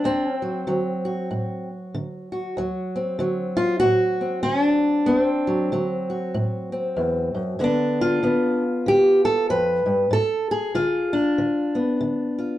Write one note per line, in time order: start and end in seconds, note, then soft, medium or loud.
0.00 0.42 F#3 soft
0.00 0.24 D4 medium
0.04 0.62 D2 medium
0.04 0.37 C4 medium
0.24 0.37 C#4 medium
0.37 0.68 C4 medium
0.42 0.67 F#3 soft
0.67 1.25 D3 medium
0.67 2.58 F#3 medium
1.05 2.32 F#4 soft
1.31 1.88 A2 medium
1.95 2.52 D3 medium
2.32 2.99 F#4 soft
2.57 3.15 D2 medium
2.57 3.20 F#3 soft
2.96 4.20 C4 soft
3.19 3.77 D3 medium
3.19 5.46 F#3 soft
3.57 3.79 F4 loud
3.80 4.41 A2 medium
3.80 4.42 F#4 loud
4.21 5.05 C4 soft
4.43 5.03 D3 medium
4.43 4.63 C#4 medium
4.63 5.70 D4 medium
5.06 5.67 D2 medium
5.06 5.18 B3 medium
5.18 6.71 C4 medium
5.47 5.71 F#3 soft
5.72 6.30 D3 medium
5.72 7.60 F#3 soft
6.10 7.58 F#4 soft
6.34 6.92 A2 medium
6.72 7.57 C4 soft
6.97 7.34 E2 medium
7.35 7.59 F#2 medium
7.59 8.18 G2 medium
7.59 8.22 D3 soft
7.59 8.23 B3 soft
7.64 8.63 D4 medium
8.01 9.51 F4 medium
8.23 8.81 D3 medium
8.23 10.09 B3 soft
8.86 9.44 D3 medium
8.86 9.24 G4 loud
9.25 9.50 A4 medium
9.50 9.85 F2 medium
9.50 10.12 B4 medium
9.86 10.10 G2 medium
10.11 10.69 G#2 medium
10.11 10.50 A4 loud
10.51 11.12 G#4 medium
10.75 11.33 D3 medium
10.75 11.76 F4 medium
11.13 12.58 D4 medium
11.38 11.96 D3 medium
11.75 12.58 B3 soft
12.01 12.58 D3 medium
12.39 12.58 F4 soft